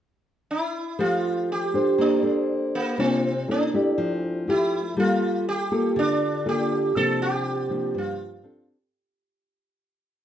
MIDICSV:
0, 0, Header, 1, 3, 480
1, 0, Start_track
1, 0, Key_signature, -1, "major"
1, 0, Tempo, 497100
1, 954, Time_signature, 4, 2, 24, 8
1, 9895, End_track
2, 0, Start_track
2, 0, Title_t, "Sitar"
2, 0, Program_c, 0, 104
2, 490, Note_on_c, 0, 64, 75
2, 965, Note_off_c, 0, 64, 0
2, 969, Note_on_c, 0, 65, 82
2, 1456, Note_off_c, 0, 65, 0
2, 1466, Note_on_c, 0, 67, 81
2, 1943, Note_on_c, 0, 62, 76
2, 1944, Note_off_c, 0, 67, 0
2, 2653, Note_off_c, 0, 62, 0
2, 2657, Note_on_c, 0, 58, 75
2, 2890, Note_off_c, 0, 58, 0
2, 2894, Note_on_c, 0, 60, 85
2, 3378, Note_off_c, 0, 60, 0
2, 3391, Note_on_c, 0, 62, 80
2, 4029, Note_off_c, 0, 62, 0
2, 4029, Note_on_c, 0, 60, 80
2, 4295, Note_off_c, 0, 60, 0
2, 4343, Note_on_c, 0, 64, 85
2, 4776, Note_off_c, 0, 64, 0
2, 4825, Note_on_c, 0, 65, 90
2, 5257, Note_off_c, 0, 65, 0
2, 5297, Note_on_c, 0, 67, 92
2, 5779, Note_off_c, 0, 67, 0
2, 5783, Note_on_c, 0, 62, 84
2, 6259, Note_off_c, 0, 62, 0
2, 6263, Note_on_c, 0, 67, 89
2, 6730, Note_on_c, 0, 69, 95
2, 6743, Note_off_c, 0, 67, 0
2, 6946, Note_off_c, 0, 69, 0
2, 6971, Note_on_c, 0, 67, 98
2, 7704, Note_off_c, 0, 67, 0
2, 7708, Note_on_c, 0, 65, 79
2, 8372, Note_off_c, 0, 65, 0
2, 9895, End_track
3, 0, Start_track
3, 0, Title_t, "Nylon-string guitar"
3, 0, Program_c, 1, 24
3, 954, Note_on_c, 1, 53, 66
3, 954, Note_on_c, 1, 57, 57
3, 958, Note_on_c, 1, 67, 54
3, 1635, Note_off_c, 1, 57, 0
3, 1636, Note_off_c, 1, 67, 0
3, 1679, Note_on_c, 1, 62, 61
3, 1683, Note_on_c, 1, 69, 50
3, 1688, Note_on_c, 1, 72, 61
3, 1890, Note_off_c, 1, 53, 0
3, 1915, Note_on_c, 1, 58, 64
3, 2118, Note_off_c, 1, 62, 0
3, 2120, Note_off_c, 1, 69, 0
3, 2122, Note_off_c, 1, 72, 0
3, 2149, Note_on_c, 1, 62, 58
3, 2155, Note_on_c, 1, 69, 61
3, 2159, Note_on_c, 1, 72, 61
3, 2834, Note_off_c, 1, 62, 0
3, 2835, Note_off_c, 1, 69, 0
3, 2838, Note_off_c, 1, 72, 0
3, 2851, Note_off_c, 1, 58, 0
3, 2876, Note_on_c, 1, 48, 69
3, 2880, Note_on_c, 1, 58, 59
3, 2886, Note_on_c, 1, 62, 51
3, 2891, Note_on_c, 1, 65, 59
3, 3200, Note_off_c, 1, 58, 0
3, 3201, Note_off_c, 1, 62, 0
3, 3205, Note_off_c, 1, 65, 0
3, 3331, Note_off_c, 1, 48, 0
3, 3361, Note_on_c, 1, 58, 52
3, 3365, Note_on_c, 1, 64, 53
3, 3371, Note_on_c, 1, 69, 56
3, 3559, Note_off_c, 1, 58, 0
3, 3561, Note_off_c, 1, 64, 0
3, 3564, Note_off_c, 1, 69, 0
3, 3608, Note_on_c, 1, 57, 53
3, 3613, Note_on_c, 1, 64, 61
3, 3617, Note_on_c, 1, 67, 57
3, 3842, Note_on_c, 1, 53, 67
3, 4283, Note_off_c, 1, 57, 0
3, 4286, Note_off_c, 1, 64, 0
3, 4286, Note_off_c, 1, 67, 0
3, 4321, Note_on_c, 1, 57, 50
3, 4325, Note_on_c, 1, 64, 60
3, 4333, Note_on_c, 1, 67, 60
3, 4627, Note_off_c, 1, 57, 0
3, 4630, Note_off_c, 1, 64, 0
3, 4631, Note_off_c, 1, 67, 0
3, 4774, Note_off_c, 1, 53, 0
3, 4795, Note_on_c, 1, 55, 66
3, 4801, Note_on_c, 1, 58, 55
3, 4804, Note_on_c, 1, 65, 54
3, 4810, Note_on_c, 1, 69, 66
3, 5276, Note_off_c, 1, 58, 0
3, 5276, Note_off_c, 1, 65, 0
3, 5278, Note_off_c, 1, 69, 0
3, 5518, Note_on_c, 1, 58, 56
3, 5519, Note_on_c, 1, 65, 53
3, 5522, Note_on_c, 1, 69, 60
3, 5731, Note_off_c, 1, 55, 0
3, 5755, Note_on_c, 1, 50, 67
3, 6197, Note_off_c, 1, 65, 0
3, 6198, Note_off_c, 1, 58, 0
3, 6200, Note_off_c, 1, 69, 0
3, 6234, Note_on_c, 1, 58, 59
3, 6235, Note_on_c, 1, 65, 53
3, 6241, Note_on_c, 1, 69, 60
3, 6675, Note_off_c, 1, 65, 0
3, 6676, Note_off_c, 1, 58, 0
3, 6679, Note_off_c, 1, 69, 0
3, 6691, Note_off_c, 1, 50, 0
3, 6720, Note_on_c, 1, 53, 61
3, 6721, Note_on_c, 1, 48, 68
3, 6723, Note_on_c, 1, 58, 55
3, 6729, Note_on_c, 1, 62, 57
3, 7397, Note_off_c, 1, 53, 0
3, 7400, Note_off_c, 1, 58, 0
3, 7403, Note_off_c, 1, 62, 0
3, 7432, Note_on_c, 1, 53, 62
3, 7435, Note_on_c, 1, 58, 54
3, 7440, Note_on_c, 1, 62, 56
3, 7653, Note_off_c, 1, 48, 0
3, 7670, Note_on_c, 1, 43, 69
3, 8115, Note_off_c, 1, 53, 0
3, 8115, Note_off_c, 1, 58, 0
3, 8118, Note_off_c, 1, 62, 0
3, 8127, Note_off_c, 1, 43, 0
3, 8144, Note_on_c, 1, 60, 51
3, 8150, Note_on_c, 1, 62, 52
3, 8160, Note_on_c, 1, 69, 56
3, 8458, Note_off_c, 1, 60, 0
3, 8461, Note_off_c, 1, 62, 0
3, 8466, Note_off_c, 1, 69, 0
3, 9895, End_track
0, 0, End_of_file